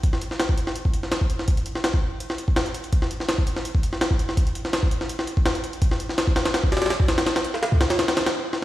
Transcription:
\new DrumStaff \with { instrumentName = "Drums" } \drummode { \time 4/4 \tempo 4 = 166 <hh bd>16 sn16 hh16 sn16 <hh sn>16 bd16 hh16 sn16 hh16 bd16 hh16 sn16 <hh sn>16 bd16 hh16 sn16 | <hh bd>16 hh16 hh16 sn16 <hh sn>16 bd8. hh16 sn16 hh16 bd16 <hh sn>16 hh16 hh16 hh16 | <hh bd>16 sn16 hh16 sn16 <hh sn>16 bd16 hh16 sn16 hh16 bd16 hh16 sn16 <hh sn>16 bd16 hh16 sn16 | <hh bd>16 hh16 hh16 sn16 <hh sn>16 bd16 hh16 sn16 hh16 sn16 hh16 bd16 <hh sn>16 hh16 hh16 hh16 |
<hh bd>16 sn16 hh16 sn16 <hh sn>16 bd16 <hh sn>16 <hh sn>16 <hh sn>16 bd16 <hh sn>32 <hh sn>32 <hh sn>32 <hh sn>32 <hh sn>16 bd16 <hh sn>16 <hh sn>16 | <hh sn>16 <hh sn>16 hh16 sn16 <hh sn>16 bd16 <hh sn>16 <hh sn>16 <hh sn>16 <hh sn>16 <hh sn>16 <hh sn>16 r8 sn8 | }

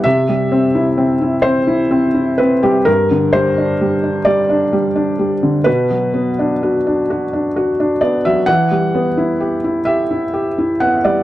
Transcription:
\new Staff \with { instrumentName = "Felt piano" } { \time 6/8 \key b \phrygian \tempo 4. = 43 << { e''4. c''4 b'16 g'16 | ais'8 c''4 d''8 r4 | b'2~ b'8 d''16 e''16 | fis''4. e''4 fis''16 d''16 | } \\ { c16 g16 c'16 e'16 c'16 e'16 c'16 e'16 c'16 e'16 c'16 g16 | g,16 d16 g16 d'16 g16 d'16 g16 d'16 g16 d'16 g16 d16 | b,16 fis16 b16 d'16 fis'16 d'16 fis'16 d'16 fis'16 d'16 b16 fis16 | e16 g16 b16 e'16 g'16 e'16 g'16 e'16 g'16 e'16 b16 g16 | } >> }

